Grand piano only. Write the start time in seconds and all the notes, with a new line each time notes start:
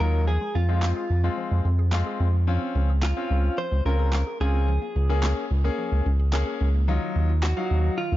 0.00 F#3 D#4 F4
0.69 G#3 C4 F4
1.24 G#3 C4 F4
1.92 G#3 C4 F4
2.47 C4 C#4 F4
3.17 C4 C#4 F4
3.86 C4 C#4 F4
4.41 C4 C#4 F4
5.09 A#3 C#4 G#4
5.64 A#3 C#4 G#4
6.33 A#3 C#4 G#4
6.88 F#3 D#4 F4
7.57 F#3 D#4 F5